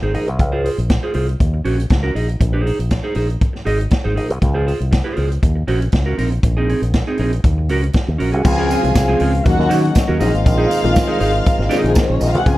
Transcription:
0.02 G#1 D#4 G#4 C5
0.14 A#1 D#4 G#4 D#5, open hi-hat
0.27 C2, muted clean electric guitar stroke, closed hi-hat
0.39 C#2, muted clean electric guitar stroke, kick, closed hi-hat
0.52 F4 G#4 C5
0.64 F4 G#4 C5, open hi-hat
0.77 A#1, muted clean electric guitar stroke, closed hi-hat
0.89 muted clean electric guitar stroke, kick, snare, closed hi-hat
1.03 F4 G#4 C5
1.14 C2 F4 G#4 C5, open hi-hat
1.28 muted clean electric guitar stroke, closed hi-hat
1.40 D#2, kick, closed hi-hat
1.54 muted clean electric guitar stroke
1.65 A#1 C#4 F#4 C5, open hi-hat
1.78 muted clean electric guitar stroke, closed hi-hat
1.90 C#2, muted clean electric guitar stroke, kick, snare, closed hi-hat
2.03 C#4 F#4 A#4
2.15 A#1 D#4 G#4 D#5, open hi-hat
2.28 muted clean electric guitar stroke, closed hi-hat
2.40 A#1, muted clean electric guitar stroke, kick, closed hi-hat
2.53 D#4 G#4 C5
2.65 D#4 G#4 C5, open hi-hat
2.79 A#1, muted clean electric guitar stroke, closed hi-hat
2.91 muted clean electric guitar stroke, kick, snare, closed hi-hat
3.04 D#4 G#4 C5
3.15 A#1 D#4 G#4 C5, open hi-hat
3.28 muted clean electric guitar stroke, closed hi-hat
3.41 kick, closed hi-hat
3.53 muted clean electric guitar stroke, snare
3.65 G#1 D#4 G#4 D#5, open hi-hat
3.79 muted clean electric guitar stroke, closed hi-hat
3.90 muted clean electric guitar stroke, kick, snare, closed hi-hat
4.04 G#1 D#4 G#4 C5
4.16 A#1 D#4 G#4 D#5, open hi-hat
4.29 C2, muted clean electric guitar stroke, closed hi-hat
4.41 C#2, muted clean electric guitar stroke, kick, closed hi-hat
4.54 F4 G#4 C5
4.66 F4 G#4 C5, open hi-hat
4.79 C2, muted clean electric guitar stroke, closed hi-hat
4.91 muted clean electric guitar stroke, kick, snare, closed hi-hat
5.04 F4 G#4 C5
5.16 C#2 F4 G#4 C5, open hi-hat
5.30 muted clean electric guitar stroke, closed hi-hat
5.43 D#2, kick, closed hi-hat
5.56 muted clean electric guitar stroke
5.67 A#1 C#4 F#4 C5, open hi-hat
5.81 muted clean electric guitar stroke, closed hi-hat
5.92 C#2, muted clean electric guitar stroke, kick, snare, closed hi-hat
6.06 C#4 F#4 A#4
6.18 A#1 C4 D#4 A#4, open hi-hat
6.31 muted clean electric guitar stroke, closed hi-hat
6.43 A#1, muted clean electric guitar stroke, kick, closed hi-hat
6.57 C4 D#4 G#4
6.69 C4 D#4 G#4, open hi-hat
6.82 A#1, muted clean electric guitar stroke, closed hi-hat
6.94 muted clean electric guitar stroke, kick, snare, closed hi-hat
7.07 C4 D#4 G#4
7.18 A#1 C4 D#4 G#4, open hi-hat
7.33 muted clean electric guitar stroke, closed hi-hat
7.44 D#2, kick, closed hi-hat
7.58 muted clean electric guitar stroke
7.69 C#2 C#4 F#4 A#4, open hi-hat
7.83 muted clean electric guitar stroke, closed hi-hat
7.93 muted clean electric guitar stroke, kick, snare, closed hi-hat
8.07 D#2, muted clean electric guitar stroke
8.18 A#1 C#4 F#4 A#4, open hi-hat
8.32 C2 C#4 F#4 G#4, closed hi-hat
8.44 C#2 C#3 F3 G#3 C4 F4 G#4 C5 F5 G#5, muted clean electric guitar stroke, kick, crash, tambourine
8.58 C4 F4 G#4
8.70 C4 F4 G#4, open hi-hat, tambourine
8.83 C2 C#3 F3 G#3 C4 F4, muted clean electric guitar stroke, closed hi-hat
8.94 C2, muted clean electric guitar stroke, kick, snare, closed hi-hat, tambourine
9.08 C4 F4 G#4
9.20 C#2 C4 F4 G#4, open hi-hat
9.33 muted clean electric guitar stroke, closed hi-hat
9.45 D#2 D#3 F#3 A#3 C#4 F#4 D#5 F#5, kick, closed hi-hat, tambourine
9.58 D#2, muted clean electric guitar stroke, snare
9.69 D#3 F#3 A#3 C#4 F#4 C5, open hi-hat, tambourine
9.83 muted clean electric guitar stroke, closed hi-hat
9.94 muted clean electric guitar stroke, kick, snare, closed hi-hat, tambourine
10.08 D#2 C#4 F#4 A#4
10.19 A#1 D#3 G#3 A#3 C4 D#4 F4 G#4 C5 D#5 F5, open hi-hat, tambourine
10.32 G#1, muted clean electric guitar stroke, closed hi-hat
10.44 A#1, muted clean electric guitar stroke, kick, closed hi-hat, tambourine
10.58 D#4 G#4 C5
10.69 D#4 G#4 C5, open hi-hat, tambourine
10.83 A#1 D#3 G#3 A#3 C4 F4, muted clean electric guitar stroke, closed hi-hat
10.95 muted clean electric guitar stroke, kick, snare, closed hi-hat, tambourine
11.08 D#4 G#4 C5
11.19 G#1 D#4 G#4 C5, open hi-hat, tambourine
11.33 muted clean electric guitar stroke, closed hi-hat
11.46 kick, closed hi-hat, tambourine
11.58 G#1, muted clean electric guitar stroke, snare
11.69 D#3 G#3 A#3 C4 D#4 F4 G#4 D#5, open hi-hat, tambourine
11.83 A#1, muted clean electric guitar stroke, closed hi-hat
11.88 G#3 G#4
11.95 A#3 A#4, muted clean electric guitar stroke, kick, snare, closed hi-hat, tambourine
12.04 C4 C5
12.09 A#1 C#4 C#5, muted clean electric guitar stroke
12.20 A#1 D#4 D#5, open hi-hat, tambourine
12.29 F4 F5
12.35 C2 F#4 F#5, muted clean electric guitar stroke, closed hi-hat
12.45 C#2 C#3 F3 G#3 C4 F4 G#4 F5 G#5, muted clean electric guitar stroke, kick, closed hi-hat, tambourine

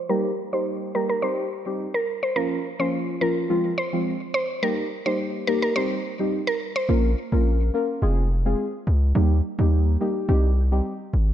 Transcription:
0.09 G3 A#3 D#4 G4 A#4
0.52 G3 A#3 D#4 G4 C5
0.94 G3 A#3 D#4 G4 A#4
1.09 A#4
1.22 G3 C4 D#4 G4 C5
1.66 G3 C4 D#4 G4
1.94 A#4
2.23 C5
2.36 F3 A#3 C#4 F4 A#4
2.79 F3 A#3 C#4 F4 C5
3.21 F3 A#3 C#4 F4 A#4
3.49 F3 G#3 C4 F4
3.78 C5
3.93 F3 G#3 C4 F4
4.34 C5
4.62 G3 A#3 D#4 G4 A#4
5.06 G3 A#3 D#4 G4 C5
5.47 G3 A#3 D#4 G4 A#4
5.62 A#4
5.76 G3 C4 D#4 G4 C5
6.19 G3 C4 D#4 G4
6.47 A#4
6.76 C5
6.88 A#1 A#3 C#4 F4 A#4
7.32 A#1 A#3 C#4 F4 A#4
7.74 A#3 C#4 F4 A#4
8.02 F1 G#3 C4 F4 G#4
8.45 G#3 C4 F4 G#4
8.87 C#2
9.15 D#2 G3 A#3 D#4 G4
9.58 D#2 G3 A#3 D#4 G4
10.00 G3 A#3 D#4 G4
10.28 C2 G3 C4 D#4 G4
10.72 G3 C4 D#4 G4
11.13 G#1

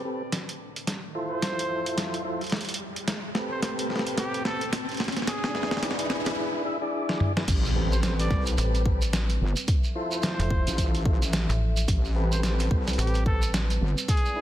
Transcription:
Already playing: A3 C4 G4 B4, riser
0.05 C4 G4 A4 B4
0.32 snare, closed hi-hat
0.49 closed hi-hat
0.76 closed hi-hat
0.87 F3 E5, snare, closed hi-hat
1.15 E4 F4 A4 C5
1.31 C5
1.42 snare, closed hi-hat
1.59 closed hi-hat
1.86 closed hi-hat
1.98 snare, closed hi-hat
2.14 closed hi-hat
2.25 E4 F4 A4 C5
2.41 closed hi-hat
2.44 closed hi-hat
2.47 closed hi-hat
2.50 snare, closed hi-hat
2.52 closed hi-hat
2.56 closed hi-hat
2.61 closed hi-hat
2.65 closed hi-hat
2.69 closed hi-hat
2.74 closed hi-hat
2.96 closed hi-hat
3.07 A3 C4 G4 B4, snare, closed hi-hat
3.34 C4 G4 A4 B4, snare
3.51 C5
3.62 C5, snare, closed hi-hat
3.79 closed hi-hat
3.90 snare
3.95 snare
3.99 snare
4.07 closed hi-hat
4.18 G4, snare, closed hi-hat
4.34 closed hi-hat
4.44 C4 G4 A4 B4, snare
4.61 closed hi-hat
4.73 snare, closed hi-hat
4.89 closed hi-hat
4.92 closed hi-hat
4.94 closed hi-hat
4.97 snare, closed hi-hat
5.00 closed hi-hat
5.04 closed hi-hat
5.08 snare, closed hi-hat
5.12 closed hi-hat
5.16 snare, closed hi-hat
5.22 snare
5.27 G#3 E4 G#4 D5, snare, closed hi-hat
5.44 snare
5.55 D4 E4 G#4 B4, snare
5.63 snare
5.71 snare
5.77 snare
5.83 snare, closed hi-hat
5.91 snare
5.99 closed hi-hat
6.10 snare
6.26 snare, closed hi-hat
6.65 D4 E4 G#4 E5
6.82 D4 E4 G#4 D5
7.09 snare
7.20 mid tom
7.37 D4 E4 G#4 B4, snare
7.47 A1 G3 C4 B4, kick, closed hi-hat, crash, impact, shekere
7.65 shekere
7.75 C4 G4 A4 B4
7.92 C5, shekere
8.03 C5, snare, closed hi-hat, shekere
8.19 D5, closed hi-hat, shekere
8.31 C2, kick, snare
8.46 closed hi-hat, shekere
8.58 A1, closed hi-hat, shekere
8.75 closed hi-hat, shekere
8.86 C4 G4 A4 B4, kick
9.02 closed hi-hat, shekere
9.13 snare, closed hi-hat, shekere
9.29 closed hi-hat, shekere
9.41 G1
9.56 closed hi-hat, shekere
9.67 F3 A4 E5, kick, closed hi-hat, shekere
9.84 shekere
9.95 E4 F4 A4 C5
10.11 C5, shekere
10.22 snare, closed hi-hat, shekere
10.39 F1, closed hi-hat, shekere
10.50 kick
10.67 A1, closed hi-hat, shekere
10.78 kick, closed hi-hat, shekere
10.95 closed hi-hat, shekere
11.05 E4 F4 A4 C5, kick
11.22 closed hi-hat, shekere
11.33 snare, closed hi-hat, shekere
11.49 A1, closed hi-hat, shekere
11.77 closed hi-hat, shekere
11.88 A1 G3 C4 B4, kick, closed hi-hat, shekere
12.05 shekere
12.15 C4 G4 A4 B4
12.32 C5, shekere
12.43 C5, snare, closed hi-hat, shekere
12.59 closed hi-hat, shekere
12.71 C2, kick
12.88 snare, closed hi-hat, shekere
12.93 closed hi-hat
12.98 A1 G4, closed hi-hat, shekere
13.07 closed hi-hat
13.14 closed hi-hat, shekere
13.25 C4 G4 A4 B4, kick
13.42 closed hi-hat, shekere
13.54 snare, closed hi-hat, shekere
13.70 closed hi-hat, shekere
13.81 G1
13.98 closed hi-hat, shekere
14.08 G#3 E4 G#4 D5, kick, closed hi-hat, shekere
14.17 closed hi-hat
14.26 shekere
14.36 D4 E4 G#4 B4

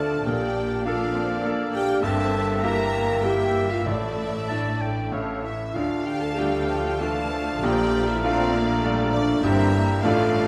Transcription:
Already playing: D2 D3 F3 A3 C4 D4 A4 D5 F5 A5
0.25 A#1 A#2 A#3 G4 D5 F5 G5 A5
0.85 A#3 D4 F4 A4 D5 F5 A5
1.14 C4
1.44 A#3 D4 A4
1.73 G4 G5
2.03 G1 G2 A#3 C4 A4 E5 G5 A5
2.61 A#3 E4 G4 A#4 E5 G5 A#5
3.22 A#3 E4 G4 E5 G5
3.69 F4 F5
3.83 A1 A2 A3 E4 D5 E5
3.87 A2 A3 E5 A5
4.49 A3 D4 E4 A5
4.81 G5
5.12 A1 A2 A3 C#4 E4 C#5 E5 F5 A5
5.43 E4 E5
5.74 D2 D3 A3 F4 D5 F5 A5
6.05 G4 G5
6.21 A4 A5
6.36 G3 A3 D4 F4 G4 G5
6.69 F3
7.00 E3 A3 D4 F4 A4 F5 A5
7.32 F3
7.61 A#1 A#2 G4 D5 G5 A#5
8.09 E4 E5
8.23 A3 C4 D4 F4 D5 F5
8.55 A#3
8.84 G3 A3 D4 F4
9.12 F3 D4 D5
9.42 G1 G2 G3 A#3 C4 E4 G4 A#4 E5 G5 A#5
9.73 A#3
10.02 A1 A2 A3 D4 F4 D5 F5 A5
10.33 G3

